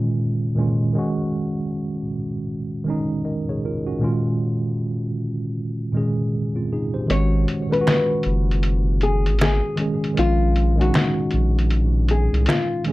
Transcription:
Already playing: A#2 D#3 G#3 C#4 F4
0.55 A#2 D#3 G#3 C#4
0.60 F4
0.93 D#3 G#3 C#4
0.98 F#4
2.84 D#3 G#3 C#4
2.90 D#4
3.25 A#4 D#5
3.49 G#4 C#5
3.65 F4 A#4
3.87 C#4 F#4
3.99 A#2 D#3 G#3
4.03 C#4 F4
5.92 A#2 D#3 G#3 C#4
5.97 G#4
6.56 C4 F4
6.73 D#4 G#4
6.94 G4 C5
7.08 G#1 D#3 G#3 C#4 C#5, closed hi-hat
7.13 F#4
7.48 closed hi-hat
7.69 D#3 G#3 C#4 B4
7.73 F4, closed hi-hat
7.81 F#4
7.87 finger snap, snare, closed hi-hat
8.23 F#1, closed hi-hat
8.51 closed hi-hat
8.63 closed hi-hat
9.01 G#4, closed hi-hat
9.25 G#1, closed hi-hat
9.39 G#4, finger snap, snare, closed hi-hat
9.76 D#3 G#3 C#4, closed hi-hat
9.81 G#4
10.04 closed hi-hat
10.14 D#3 G#3 C#4, closed hi-hat
10.18 A#1 F4
10.56 closed hi-hat
10.76 D#3 G#3 C#4
10.81 D#4 F#4, closed hi-hat
10.94 finger snap, snare, closed hi-hat
11.31 A#1, closed hi-hat
11.59 closed hi-hat
11.70 closed hi-hat
12.09 G#4, closed hi-hat
12.33 C2, closed hi-hat
12.46 F4, finger snap, snare, closed hi-hat
12.84 D#3 G#3 C#4, closed hi-hat

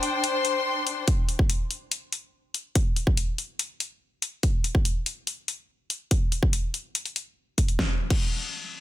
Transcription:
Already playing: D4 C5 G5
0.03 closed hi-hat
0.15 C6
0.24 closed hi-hat
0.45 closed hi-hat
0.87 closed hi-hat
1.08 kick, closed hi-hat
1.29 closed hi-hat
1.39 kick
1.50 closed hi-hat
1.71 closed hi-hat
1.92 closed hi-hat
2.12 closed hi-hat
2.54 closed hi-hat
2.75 kick, closed hi-hat
2.96 closed hi-hat
3.07 kick
3.17 closed hi-hat
3.38 closed hi-hat
3.59 closed hi-hat
3.80 closed hi-hat
4.22 closed hi-hat
4.43 kick, closed hi-hat
4.64 closed hi-hat
4.75 kick
4.85 closed hi-hat
5.06 closed hi-hat
5.27 closed hi-hat
5.48 closed hi-hat
5.90 closed hi-hat
6.11 kick, closed hi-hat
6.32 closed hi-hat
6.43 kick
6.53 closed hi-hat
6.74 closed hi-hat
6.95 closed hi-hat
7.05 closed hi-hat
7.16 closed hi-hat
7.58 kick, closed hi-hat
7.68 closed hi-hat
7.79 kick, snare
8.10 kick, crash

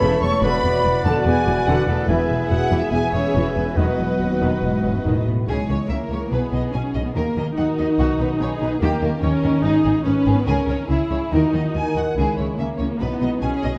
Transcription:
Already playing: E3 B3 C#4 E4 A4 B4 C#5 E5 A5 B5
0.01 E1 E2 C#3
0.22 E1 E2 A3 B3 C#5 C#6
0.43 E1 E2 D3 E3 F#4 B4 D5 F#5 B5
0.63 E1 E2 B3
0.84 E1 E2 C#3 F#3
1.05 E1 E2 D3 B3 A4 A5
1.25 E1 E2 E3 B3 G#4 G#5
1.47 E1 E2 F#3 D4
1.67 E1 E2 D3 E4 F#4 F#5
1.88 E1 E2 A3 B3 A4
2.08 E1 E2 E3 B3 G#4 B4 E5 G#5
2.30 E1 E2 B3
2.49 E1 E2 G#3 C#4 F#4 F#5
2.70 E1 E2 E3 B3
2.80 E4 E5
2.91 E1 E2 E3 B3 G#4 E5 G#5
3.12 E1 E2 G#3 C#4 E4 C#5
3.35 E1 E2 E3 F#4
3.54 E1 E2 B3 B4
3.76 E1 E2 D#3 F#3 B3 F#4 B4 D#5 F#5
3.98 E1 E2 B3
4.20 E1 D#2 F#3 C#4
4.41 E1 D#3 B3
4.62 E1 G#2 E3 B3
4.84 E1 F#3 D#4
4.95 F#2
5.05 E1 A2 D#3 E4
5.26 E1 B3
5.48 C#2 C#3 G#3 G#4 C#5
5.69 C#2 C#3 E4 C#5
5.89 C#2 C#3 A#3 A#4 C#5 E5
6.10 C#2 C#3 G#4 C#5
6.31 B1 B2 B3 G#4 B4
6.52 B1 B2 D#4 D#5
6.73 B1 B2 C#4 D#5 G#5
6.94 B1 B2 G#4 D#5
7.05 B3
7.14 D#2 D#3 A#3 A#4
7.36 D#2 D#3 D#4 D#5
7.56 D#2 D#3 D#4 F#4 A#4 F#5
7.79 D#2 D#3 F#4 D#5
7.99 B1 B2 F#4
8.20 B1 B2 C#4 B4
8.40 B1 B2 G#4 B4 C#5
8.60 B1 B2 F#4 B4
8.81 D#2 D#3 A#3 G4
9.01 D#2 D#3 C#4 A#4
9.22 D#2 D#3 C#4 G4 A#4 C#5
9.43 D#2 D#3 D#4 A#4
9.63 G#1 G#2 D#4 G#4
9.84 G#1 G#2 B3 G#4
10.05 G#1 G#2 C#4 G#4 B4
10.26 G#1 G#2 D#4 G#4
10.37 B3
10.47 C#2 C#3 C#4 G#4 A#4
10.68 C#2 C#3 C#4 C#5
10.89 C#2 C#3 E4 G#4 E5
11.11 C#2 C#3 E4 C#5
11.31 D#2 D#3 D#4 F#4 A#4
11.53 D#2 D#3 D#4 D#5
11.74 D#2 D#3 A#4 G#5
11.95 D#2 D#3 F#4 F#5
12.15 C#2 C#3 G#3 E4 G#4
12.37 C#2 C#3 C#4 C#5
12.57 C#2 C#3 A#3 C#4 G#4 E5
12.78 C#2 C#3 E4 C#5
13.00 B1 B2 B3 D#4 B4
13.21 B1 B2 G#3 D#5
13.41 B1 B2 C#4 G#4 G#5
13.62 B1 B2 D#4 D#5

